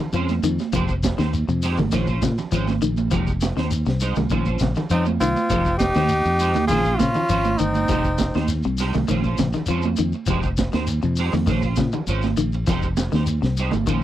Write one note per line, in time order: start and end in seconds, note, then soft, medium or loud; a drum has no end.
0.00 muted clean electric guitar stroke medium
0.00 low conga medium
0.13 0.39 F2 medium
0.13 0.30 F3 medium
0.13 0.32 G#3 medium
0.13 0.32 C#4 loud
0.13 0.33 C5 loud
0.13 muted clean electric guitar stroke loud
0.13 ride bell medium
0.13 shekere medium
0.29 snare soft
0.29 high conga medium
0.29 shekere soft
0.43 0.57 F2 medium
0.43 0.60 D#3 medium
0.43 muted clean electric guitar stroke soft
0.43 ride bell medium
0.43 shekere medium
0.59 muted clean electric guitar stroke medium
0.59 snare soft
0.59 high conga medium
0.59 shekere soft
0.73 1.13 F1 loud
0.73 0.89 F3 loud
0.73 0.92 G#3 medium
0.73 0.92 G4 loud
0.73 0.92 C5 loud
0.73 muted clean electric guitar stroke medium
0.73 kick medium
0.73 ride bell medium
0.73 low conga medium
0.73 shekere loud
0.88 kick medium
0.88 shekere soft
1.03 muted clean electric guitar stroke soft
1.03 kick medium
1.03 snare medium
1.03 ride bell medium
1.03 high conga loud
1.03 shekere medium
1.18 1.45 D#2 medium
1.18 1.34 D#3 medium
1.18 1.32 D#4 medium
1.18 1.33 G4 medium
1.18 1.33 C5 medium
1.18 snare medium
1.18 ride bell medium
1.18 high conga medium
1.18 shekere soft
1.33 muted clean electric guitar stroke soft
1.33 ride bell medium
1.33 shekere medium
1.48 1.80 F2 medium
1.48 1.64 C3 medium
1.48 muted clean electric guitar stroke soft
1.48 shekere soft
1.62 1.78 G#3 loud
1.62 1.78 D#4 medium
1.62 1.78 G4 loud
1.62 1.77 C5 loud
1.62 snare soft
1.62 open hi-hat medium
1.62 shekere medium
1.77 1.91 G#1 medium
1.77 1.86 D#3 medium
1.77 muted clean electric guitar stroke medium
1.77 ride bell medium
1.77 high conga medium
1.77 low conga medium
1.77 shekere soft
1.92 2.18 A#1 loud
1.92 2.09 D#3 medium
1.92 2.08 G#3 medium
1.92 2.08 C#4 medium
1.92 2.08 F4 medium
1.92 2.07 C5 medium
1.92 kick medium
1.92 snare soft
1.92 ride bell soft
1.92 shekere medium
2.07 2.22 C#4 medium
2.07 2.22 F4 medium
2.07 2.22 C5 medium
2.07 kick medium
2.07 shekere soft
2.22 2.36 A#2 medium
2.22 2.31 C#3 medium
2.22 muted clean electric guitar stroke soft
2.22 kick medium
2.22 snare medium
2.22 ride bell medium
2.22 high conga loud
2.22 shekere medium
2.38 muted clean electric guitar stroke soft
2.38 snare soft
2.38 ride bell soft
2.38 low conga medium
2.38 shekere soft
2.52 2.78 G#1 loud
2.52 2.68 F3 medium
2.52 2.71 G#3 medium
2.52 2.71 C#4 loud
2.52 2.71 F4 medium
2.52 2.71 C5 loud
2.52 ride bell medium
2.52 shekere medium
2.68 snare soft
2.68 high conga medium
2.68 shekere soft
2.82 3.08 A#1 medium
2.82 2.98 D#3 medium
2.82 muted clean electric guitar stroke soft
2.82 ride bell soft
2.82 shekere medium
2.97 muted clean electric guitar stroke soft
2.97 ride bell soft
2.97 high conga medium
2.97 shekere soft
3.11 3.51 F1 loud
3.11 3.27 F3 medium
3.11 3.30 G#3 medium
3.11 3.30 D#4 loud
3.11 3.30 G4 medium
3.11 muted clean electric guitar stroke loud
3.11 kick medium
3.11 ride bell soft
3.11 low conga medium
3.11 shekere loud
3.27 kick medium
3.27 shekere soft
3.41 muted clean electric guitar stroke soft
3.41 snare medium
3.41 ride bell medium
3.41 high conga loud
3.41 shekere medium
3.57 3.83 D#2 medium
3.57 3.73 D#3 medium
3.57 3.70 D#4 medium
3.57 3.71 G4 medium
3.57 3.71 C5 medium
3.57 snare medium
3.57 high conga medium
3.57 shekere soft
3.71 muted clean electric guitar stroke soft
3.71 ride bell medium
3.71 shekere medium
3.86 4.13 C2 medium
3.86 4.03 C3 medium
3.86 muted clean electric guitar stroke soft
3.86 snare medium
3.86 shekere soft
4.00 4.17 G#3 medium
4.00 4.16 D#4 medium
4.00 4.16 C5 loud
4.00 muted clean electric guitar stroke medium
4.00 snare soft
4.00 ride bell medium
4.00 shekere medium
4.15 4.30 C2 medium
4.15 4.25 D#3 medium
4.15 muted clean electric guitar stroke soft
4.15 snare soft
4.15 ride bell medium
4.15 high conga medium
4.15 low conga medium
4.15 shekere soft
4.30 4.57 A#1 loud
4.30 4.47 D#3 medium
4.30 4.47 G#3 medium
4.30 4.46 C#4 medium
4.30 4.46 F4 medium
4.30 4.45 C5 medium
4.30 kick medium
4.30 ride bell soft
4.30 shekere medium
4.45 4.60 C#4 soft
4.45 4.60 F4 medium
4.45 4.60 C5 medium
4.45 kick medium
4.45 shekere soft
4.59 4.74 A#1 loud
4.59 4.69 C#3 medium
4.59 muted clean electric guitar stroke soft
4.59 kick medium
4.59 snare medium
4.59 ride bell medium
4.59 high conga medium
4.59 shekere medium
4.75 4.85 D#3 medium
4.75 muted clean electric guitar stroke soft
4.75 snare soft
4.75 ride bell medium
4.75 low conga medium
4.75 shekere soft
4.90 5.17 F2 medium
4.90 5.07 F3 medium
4.90 5.09 G#3 medium
4.90 5.04 C4 medium
4.90 5.09 C#4 medium
4.90 5.05 D#4 medium
4.90 5.09 F4 medium
4.90 5.10 C5 medium
4.90 ride bell medium
4.90 shekere medium
5.06 high conga medium
5.06 shekere soft
5.20 5.34 C2 medium
5.20 5.37 D#3 medium
5.20 5.76 C4 medium
5.20 5.76 F4 medium
5.20 muted clean electric guitar stroke soft
5.20 ride bell medium
5.20 shekere medium
5.36 muted clean electric guitar stroke soft
5.36 high conga medium
5.36 shekere soft
5.49 5.90 F1 medium
5.49 5.67 F3 medium
5.49 5.69 G#3 medium
5.49 5.69 D#4 medium
5.49 5.69 G4 medium
5.49 5.69 C5 medium
5.49 kick medium
5.49 ride bell medium
5.49 low conga medium
5.49 shekere medium
5.65 kick medium
5.65 shekere soft
5.78 6.65 D#4 loud
5.78 6.65 G4 loud
5.78 muted clean electric guitar stroke soft
5.78 kick medium
5.78 snare medium
5.78 ride bell medium
5.78 high conga loud
5.78 shekere medium
5.94 6.22 D#2 medium
5.94 6.12 D#3 medium
5.94 6.09 D#4 soft
5.94 6.09 G4 soft
5.94 6.10 C5 medium
5.94 snare medium
5.94 ride bell medium
5.94 high conga medium
5.94 shekere soft
6.09 muted clean electric guitar stroke soft
6.09 ride bell medium
6.09 shekere medium
6.25 6.56 F2 loud
6.25 muted clean electric guitar stroke soft
6.25 shekere soft
6.39 6.55 G#3 medium
6.39 6.55 D#4 medium
6.39 6.54 G4 medium
6.39 6.54 C5 medium
6.39 open hi-hat medium
6.39 shekere medium
6.54 6.68 D#2 medium
6.54 6.64 D#3 medium
6.54 muted clean electric guitar stroke soft
6.54 snare soft
6.54 ride bell medium
6.54 high conga medium
6.54 shekere soft
6.67 6.96 A#1 loud
6.67 6.87 D#3 medium
6.67 6.85 G#3 medium
6.67 6.85 C#4 medium
6.67 7.00 F4 medium
6.67 6.85 F4 medium
6.67 6.99 G#4 loud
6.67 6.84 C5 medium
6.67 kick medium
6.67 ride bell medium
6.67 shekere medium
6.85 6.99 C#4 soft
6.85 6.99 F4 soft
6.85 7.00 C5 medium
6.85 kick medium
6.85 shekere soft
6.98 7.13 A#2 medium
6.98 7.09 C#3 medium
6.98 7.60 C#4 medium
6.98 7.60 F4 loud
6.98 muted clean electric guitar stroke soft
6.98 kick medium
6.98 snare medium
6.98 ride bell medium
6.98 high conga loud
6.98 shekere medium
7.14 7.23 D#3 medium
7.14 muted clean electric guitar stroke soft
7.14 ride bell medium
7.14 low conga medium
7.14 shekere soft
7.29 7.56 G#1 medium
7.29 7.46 F3 medium
7.29 7.48 C#4 medium
7.29 7.48 F4 medium
7.29 7.48 C5 medium
7.29 muted clean electric guitar stroke medium
7.29 ride bell medium
7.29 shekere medium
7.44 high conga medium
7.44 shekere soft
7.58 7.86 G1 medium
7.58 7.76 D#3 medium
7.58 8.49 C4 medium
7.58 8.48 D#4 medium
7.58 muted clean electric guitar stroke soft
7.58 ride bell medium
7.58 shekere medium
7.75 muted clean electric guitar stroke soft
7.75 ride bell medium
7.75 high conga medium
7.75 shekere soft
7.88 8.29 F1 loud
7.88 8.05 F3 medium
7.88 8.08 G#3 medium
7.88 8.08 D#4 medium
7.88 8.08 G4 medium
7.88 8.08 C5 medium
7.88 kick medium
7.88 snare soft
7.88 ride bell medium
7.88 low conga medium
7.88 shekere medium
8.04 kick medium
8.04 shekere soft
8.18 muted clean electric guitar stroke soft
8.18 kick medium
8.18 snare medium
8.18 ride bell medium
8.18 high conga loud
8.18 shekere medium
8.34 8.61 D#2 medium
8.34 8.51 D#3 medium
8.34 8.49 D#4 medium
8.34 8.49 G4 soft
8.34 8.49 C5 medium
8.34 snare medium
8.34 high conga medium
8.34 shekere soft
8.48 muted clean electric guitar stroke soft
8.48 snare soft
8.48 ride bell medium
8.48 shekere medium
8.63 8.91 C2 medium
8.63 8.81 C3 medium
8.63 muted clean electric guitar stroke medium
8.63 shekere soft
8.78 8.95 G#3 medium
8.78 8.94 D#4 medium
8.78 8.94 G4 loud
8.78 8.94 C5 loud
8.78 snare soft
8.78 open hi-hat medium
8.78 shekere medium
8.93 9.08 C2 medium
8.93 9.02 D#3 medium
8.93 muted clean electric guitar stroke medium
8.93 ride bell medium
8.93 high conga medium
8.93 low conga medium
8.93 shekere soft
9.08 9.35 A#1 loud
9.08 9.24 D#3 medium
9.08 9.25 G#3 medium
9.08 9.24 C#4 medium
9.08 9.24 F4 medium
9.08 9.23 C5 medium
9.08 kick medium
9.08 ride bell medium
9.08 high conga medium
9.08 shekere medium
9.24 9.39 C#4 soft
9.24 9.39 F4 medium
9.24 9.39 C5 medium
9.24 kick medium
9.24 shekere soft
9.38 9.52 A#1 loud
9.38 9.47 C#3 medium
9.38 kick medium
9.38 snare medium
9.38 ride bell medium
9.38 high conga loud
9.38 shekere medium
9.53 9.62 D#3 medium
9.53 muted clean electric guitar stroke soft
9.53 snare soft
9.53 ride bell medium
9.53 low conga medium
9.53 shekere soft
9.66 9.95 F2 medium
9.66 9.84 F3 medium
9.66 9.87 G#3 loud
9.66 9.87 C#4 medium
9.66 9.87 F4 loud
9.66 9.87 C5 loud
9.66 ride bell medium
9.66 shekere medium
9.82 high conga medium
9.82 shekere soft
9.96 10.12 F2 loud
9.96 10.14 D#3 medium
9.96 muted clean electric guitar stroke soft
9.96 ride bell medium
9.96 shekere medium
10.12 muted clean electric guitar stroke medium
10.12 shekere soft
10.26 10.68 F1 loud
10.26 10.44 F3 loud
10.26 10.47 G#3 loud
10.26 10.47 D#4 medium
10.26 10.47 G4 loud
10.26 10.47 C5 loud
10.26 kick medium
10.26 ride bell medium
10.26 low conga medium
10.26 shekere medium
10.43 kick medium
10.43 shekere soft
10.57 muted clean electric guitar stroke soft
10.57 kick medium
10.57 snare medium
10.57 ride bell medium
10.57 high conga loud
10.57 shekere medium
10.73 11.00 D#2 medium
10.73 10.89 D#3 medium
10.73 10.88 D#4 soft
10.73 10.88 G4 medium
10.73 10.88 C5 medium
10.73 snare medium
10.73 ride bell medium
10.73 high conga medium
10.73 shekere soft
10.87 muted clean electric guitar stroke soft
10.87 ride bell medium
10.87 shekere medium
11.02 11.30 F2 loud
11.02 11.19 C3 medium
11.02 muted clean electric guitar stroke medium
11.02 shekere soft
11.16 11.34 G#3 medium
11.16 11.34 D#4 medium
11.16 11.33 G4 loud
11.16 11.33 C5 loud
11.16 open hi-hat medium
11.16 shekere medium
11.32 11.46 F2 medium
11.32 11.41 D#3 medium
11.32 muted clean electric guitar stroke soft
11.32 ride bell medium
11.32 high conga medium
11.32 shekere soft
11.47 11.74 A#1 loud
11.47 11.63 D#3 medium
11.47 11.63 G#3 medium
11.47 11.64 C#4 medium
11.47 11.63 F4 medium
11.47 11.62 C5 medium
11.47 kick medium
11.47 snare soft
11.47 ride bell soft
11.47 high conga medium
11.47 shekere medium
11.62 11.78 C#4 medium
11.62 11.78 F4 medium
11.62 11.78 C5 medium
11.62 kick medium
11.62 shekere soft
11.76 11.91 A#2 medium
11.76 11.86 C#3 medium
11.76 muted clean electric guitar stroke soft
11.76 kick medium
11.76 snare medium
11.76 ride bell medium
11.76 high conga medium
11.76 shekere medium
11.92 12.01 D#3 medium
11.92 muted clean electric guitar stroke medium
11.92 ride bell medium
11.92 low conga medium
11.92 shekere soft
12.07 12.34 G#1 medium
12.07 12.26 G#3 loud
12.07 12.26 C#4 medium
12.07 12.26 F4 loud
12.07 12.27 C5 loud
12.07 ride bell medium
12.07 shekere medium
12.22 snare soft
12.22 high conga medium
12.22 shekere soft
12.37 12.64 A#1 medium
12.37 12.53 D#3 medium
12.37 muted clean electric guitar stroke soft
12.37 ride bell medium
12.37 shekere medium
12.52 muted clean electric guitar stroke soft
12.52 ride bell medium
12.52 shekere soft
12.67 13.07 F1 loud
12.67 12.83 F3 medium
12.67 12.86 G#3 medium
12.67 12.86 D#4 loud
12.67 12.86 G4 loud
12.67 12.87 C5 loud
12.67 kick medium
12.67 snare soft
12.67 ride bell soft
12.67 low conga medium
12.67 shekere medium
12.82 kick medium
12.82 shekere soft
12.97 muted clean electric guitar stroke soft
12.97 snare medium
12.97 ride bell medium
12.97 high conga loud
12.97 shekere medium
13.12 13.39 D#2 medium
13.12 13.28 D#3 medium
13.12 13.28 D#4 soft
13.12 13.28 G4 medium
13.12 13.28 C5 medium
13.12 snare medium
13.12 high conga medium
13.12 shekere soft
13.27 muted clean electric guitar stroke soft
13.27 ride bell medium
13.27 shekere medium
13.42 13.69 C2 medium
13.42 13.58 C3 medium
13.42 muted clean electric guitar stroke soft
13.42 snare medium
13.42 shekere soft
13.57 13.73 G#3 medium
13.57 13.74 D#4 medium
13.57 13.73 G4 loud
13.57 13.73 C5 medium
13.57 snare soft
13.57 ride bell medium
13.57 shekere medium
13.71 13.86 G#1 medium
13.71 13.80 D#3 medium
13.71 muted clean electric guitar stroke soft
13.71 ride bell soft
13.71 high conga medium
13.71 low conga medium
13.71 shekere soft
13.86 14.04 A#1 loud
13.86 14.03 D#3 medium
13.86 14.03 G#3 medium
13.86 14.03 C#4 medium
13.86 14.03 F4 medium
13.86 14.02 C5 medium
13.86 kick medium
13.86 ride bell soft
13.86 high conga medium
13.86 shekere medium